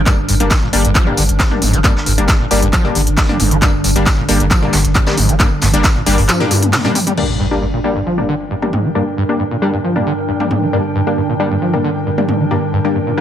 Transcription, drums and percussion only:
0.06 kick, clap, closed hi-hat, tambourine
0.29 open hi-hat, tambourine
0.40 closed hi-hat
0.51 kick, snare, clap, closed hi-hat, tambourine
0.73 open hi-hat, tambourine
0.85 closed hi-hat
0.95 kick, clap, closed hi-hat, tambourine
1.17 open hi-hat, tambourine
1.29 closed hi-hat
1.40 kick, snare, clap, closed hi-hat, tambourine
1.51 mid tom
1.62 mid tom, open hi-hat, tambourine
1.73 closed hi-hat
1.84 kick, clap, closed hi-hat, tambourine
1.96 snare
2.06 open hi-hat, tambourine
2.18 closed hi-hat
2.28 kick, snare, clap, closed hi-hat, tambourine
2.51 open hi-hat, tambourine
2.62 closed hi-hat
2.73 kick, clap, closed hi-hat, tambourine
2.84 closed hi-hat
2.95 open hi-hat, tambourine
3.07 closed hi-hat
3.17 kick, snare, clap, closed hi-hat, open hi-hat
3.29 closed hi-hat, mid tom
3.40 mid tom, open hi-hat, tambourine
3.51 closed hi-hat
3.62 kick, clap, closed hi-hat, tambourine
3.84 open hi-hat, tambourine
3.96 closed hi-hat
4.06 kick, snare, clap, closed hi-hat, tambourine
4.29 open hi-hat, tambourine
4.40 closed hi-hat
4.51 kick, clap, closed hi-hat, tambourine
4.73 snare, open hi-hat, tambourine
4.85 closed hi-hat
4.95 kick, clap, closed hi-hat, tambourine
5.07 snare, mid tom, tambourine
5.17 mid tom, open hi-hat, tambourine
5.29 closed hi-hat
5.40 kick, clap, closed hi-hat, tambourine
5.61 snare, mid tom, open hi-hat, tambourine
5.74 closed hi-hat
5.84 kick, snare, clap, closed hi-hat, tambourine
6.06 open hi-hat, tambourine
6.18 open hi-hat
6.29 clap, closed hi-hat, high tom, tambourine
6.40 closed hi-hat, high tom
6.51 open hi-hat, high tom, tambourine
6.62 closed hi-hat, mid tom
6.73 snare, clap, closed hi-hat, open hi-hat, mid tom
6.85 closed hi-hat, mid tom
6.95 mid tom, open hi-hat, tambourine
7.07 closed hi-hat, mid tom
7.17 crash
8.62 mid tom
8.73 mid tom
10.40 mid tom
10.51 mid tom
12.18 mid tom
12.29 mid tom

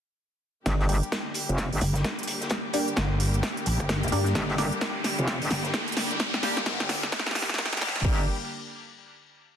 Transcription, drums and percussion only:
0.66 kick, snare, closed hi-hat
0.81 closed hi-hat
0.89 closed hi-hat, open hi-hat
1.03 closed hi-hat
1.12 kick, snare, closed hi-hat
1.34 closed hi-hat, open hi-hat
1.49 closed hi-hat
1.58 kick, snare, closed hi-hat
1.73 open hi-hat
1.81 closed hi-hat, open hi-hat
1.95 snare, closed hi-hat
2.04 kick, snare, closed hi-hat
2.19 closed hi-hat
2.23 closed hi-hat
2.27 closed hi-hat, open hi-hat
2.41 snare, closed hi-hat
2.49 kick, snare, closed hi-hat
2.73 closed hi-hat, open hi-hat
2.88 closed hi-hat
2.96 kick, snare, closed hi-hat
3.20 closed hi-hat, open hi-hat
3.34 closed hi-hat
3.43 kick, snare, closed hi-hat
3.57 closed hi-hat
3.66 closed hi-hat, open hi-hat
3.80 kick, closed hi-hat
3.89 kick, snare, closed hi-hat
4.03 closed hi-hat
4.08 closed hi-hat
4.12 closed hi-hat, open hi-hat
4.26 snare, closed hi-hat
4.35 kick, snare, closed hi-hat
4.49 closed hi-hat
4.58 snare, closed hi-hat, open hi-hat
4.72 closed hi-hat
4.81 kick, snare, closed hi-hat
5.04 snare, closed hi-hat, open hi-hat
5.19 closed hi-hat
5.28 kick, snare, closed hi-hat
5.42 open hi-hat
5.51 snare, closed hi-hat, open hi-hat
5.65 snare, closed hi-hat
5.74 kick, snare, closed hi-hat
5.88 closed hi-hat
5.92 closed hi-hat
5.97 snare, closed hi-hat, open hi-hat
6.11 snare, closed hi-hat
6.19 kick, snare, closed hi-hat
6.34 snare
6.43 snare, closed hi-hat, open hi-hat
6.57 snare, closed hi-hat
6.66 kick, snare, closed hi-hat
6.80 snare
6.89 snare, closed hi-hat, open hi-hat
7.03 snare, closed hi-hat
7.12 kick, snare, closed hi-hat
7.19 snare
7.26 snare, closed hi-hat
7.31 snare
7.35 snare, closed hi-hat, open hi-hat
7.42 snare
7.49 kick, snare
7.54 snare
7.58 kick, snare, closed hi-hat
7.66 snare
7.73 snare, closed hi-hat
7.77 snare, closed hi-hat
7.81 snare, closed hi-hat, open hi-hat
7.89 snare
7.96 snare, closed hi-hat
8.00 snare
8.04 kick, crash

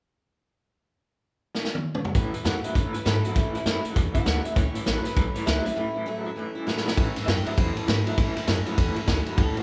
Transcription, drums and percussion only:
1.55 snare
1.65 snare
1.75 high tom
1.95 mid tom
2.05 floor tom
2.15 kick, closed hi-hat
2.34 closed hi-hat
2.45 snare, closed hi-hat
2.64 closed hi-hat
2.75 kick, closed hi-hat
2.94 closed hi-hat
3.06 snare, closed hi-hat
3.25 closed hi-hat
3.36 kick, closed hi-hat
3.55 closed hi-hat
3.66 snare, closed hi-hat
3.85 closed hi-hat
3.96 kick, closed hi-hat
4.15 kick, closed hi-hat
4.26 snare, closed hi-hat
4.45 closed hi-hat
4.56 kick, closed hi-hat
4.75 closed hi-hat
4.86 snare, closed hi-hat
5.05 snare, closed hi-hat
5.16 kick, closed hi-hat
5.35 closed hi-hat
5.47 snare, closed hi-hat
5.66 closed hi-hat
6.67 snare
6.77 snare
6.87 snare
6.97 kick, ride
7.16 snare, ride
7.28 snare, ride
7.46 ride
7.58 kick, ride
7.77 ride
7.88 snare, ride
8.07 ride
8.18 kick, ride
8.36 snare, ride
8.47 snare, ride
8.66 ride
8.78 kick, ride
8.96 ride
9.08 kick, snare, ride
9.26 ride
9.38 kick, ride
9.57 ride

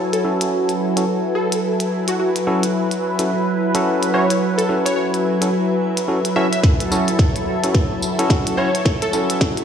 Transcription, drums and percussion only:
0.13 closed hi-hat
0.41 closed hi-hat
0.69 closed hi-hat
0.97 closed hi-hat
1.52 closed hi-hat
1.80 closed hi-hat
2.08 closed hi-hat
2.36 closed hi-hat
2.63 closed hi-hat
2.91 closed hi-hat
3.19 closed hi-hat
3.75 closed hi-hat
4.03 closed hi-hat
4.30 closed hi-hat
4.59 closed hi-hat
4.86 closed hi-hat
5.14 closed hi-hat
5.42 closed hi-hat
5.97 closed hi-hat
6.25 closed hi-hat
6.53 closed hi-hat
6.63 kick, snare
6.80 closed hi-hat
6.92 tambourine
7.08 closed hi-hat
7.19 kick, snare
7.36 closed hi-hat
7.64 closed hi-hat
7.75 kick, snare
8.02 tambourine
8.19 closed hi-hat
8.30 kick, snare
8.47 closed hi-hat
8.75 closed hi-hat
8.85 kick, snare
9.02 closed hi-hat
9.13 tambourine
9.30 closed hi-hat
9.41 kick, snare
9.57 closed hi-hat

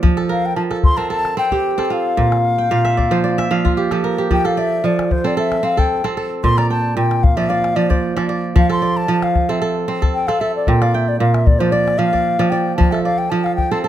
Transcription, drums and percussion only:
0.04 calabash thump
0.18 calabash click
0.57 calabash click
0.71 calabash click
0.84 calabash thump
1.25 calabash click
1.51 calabash thump
1.79 calabash click
1.91 calabash click
2.18 calabash thump
2.32 calabash click
2.45 calabash click
2.59 calabash click
2.85 calabash click
2.99 calabash thump
3.39 calabash click
3.66 calabash thump
3.91 calabash click
4.19 calabash click
4.31 calabash thump
4.45 calabash click
4.85 calabash click
4.99 calabash click
5.11 calabash thump
5.52 calabash click
5.79 calabash thump
6.05 calabash click
6.18 calabash click
6.44 calabash thump
6.58 calabash click
6.97 calabash click
7.11 calabash click
7.24 calabash thump
7.64 calabash click
7.91 calabash thump
8.18 calabash click
8.29 calabash click
8.56 calabash thump
8.70 calabash click
9.09 calabash click
9.22 calabash click
9.35 calabash thump
10.03 calabash thump
10.28 calabash click
10.41 calabash click
10.67 calabash thump
10.82 calabash click
10.95 calabash click
11.34 calabash click
11.47 calabash thump
11.61 calabash click
11.88 calabash click
12.00 calabash click
12.14 calabash thump, calabash click
12.27 calabash click
12.41 calabash click
12.68 calabash click
12.81 calabash thump
12.94 calabash click
13.33 calabash click
13.46 calabash click
13.58 calabash thump

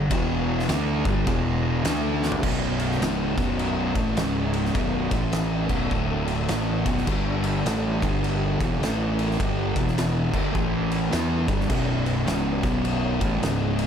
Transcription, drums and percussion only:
0.11 kick, ride bell
0.59 snare
0.69 snare, ride bell
1.05 kick
1.27 kick, ride bell
1.85 snare, ride bell
2.23 snare
2.32 floor tom
2.43 kick, crash
2.79 ride
2.92 snare
3.02 snare, ride
3.38 kick, snare, ride
3.59 ride
3.95 kick, ride
4.17 snare, ride
4.54 ride
4.65 snare
4.75 kick, ride
5.11 kick, ride
5.32 snare, ride
5.69 kick, crash
5.91 kick
6.28 ride
6.48 snare, ride
6.86 kick, ride
6.98 snare
7.07 kick, crash
7.44 ride
7.66 snare, ride
8.02 kick, ride
8.24 ride
8.61 kick, ride
8.83 snare, ride
9.19 ride
9.31 snare
9.40 kick, ride
9.76 kick, ride
9.88 snare
9.98 snare, ride
10.34 kick, crash
10.55 kick
10.91 ride
11.12 snare, ride
11.48 kick, ride
11.61 snare
11.70 kick, crash
12.06 ride
12.27 snare, ride
12.63 kick, snare, ride
12.85 ride
13.21 kick, ride
13.43 snare, ride
13.79 ride

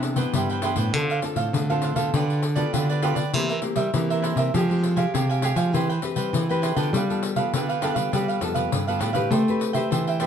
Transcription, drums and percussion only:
0.03 pandeiro
0.16 pandeiro
0.33 pandeiro
0.50 pandeiro
0.62 pandeiro
0.76 pandeiro
0.94 pandeiro
1.10 pandeiro
1.22 pandeiro
1.36 pandeiro
1.54 pandeiro
1.70 pandeiro
1.82 pandeiro
1.96 pandeiro
2.14 pandeiro
2.30 pandeiro
2.43 pandeiro
2.56 pandeiro
2.74 pandeiro
2.89 pandeiro
3.02 pandeiro
3.16 pandeiro
3.33 pandeiro
3.49 pandeiro
3.62 pandeiro
3.76 pandeiro
3.94 pandeiro
4.10 pandeiro
4.24 pandeiro
4.37 pandeiro
4.54 pandeiro
4.71 pandeiro
4.84 pandeiro
4.97 pandeiro
5.15 pandeiro
5.30 pandeiro
5.42 pandeiro
5.56 pandeiro
5.74 pandeiro
5.90 pandeiro
6.02 pandeiro
6.16 pandeiro
6.34 pandeiro
6.50 pandeiro
6.63 pandeiro
6.77 pandeiro
6.94 pandeiro
7.10 pandeiro
7.23 pandeiro
7.36 pandeiro
7.54 pandeiro
7.69 pandeiro
7.82 pandeiro
7.96 pandeiro
8.13 pandeiro
8.29 pandeiro
8.41 pandeiro
8.55 pandeiro
8.72 pandeiro
8.88 pandeiro
9.01 pandeiro
9.14 pandeiro
9.31 pandeiro
9.48 pandeiro
9.61 pandeiro
9.74 pandeiro
9.92 pandeiro
10.07 pandeiro
10.20 pandeiro

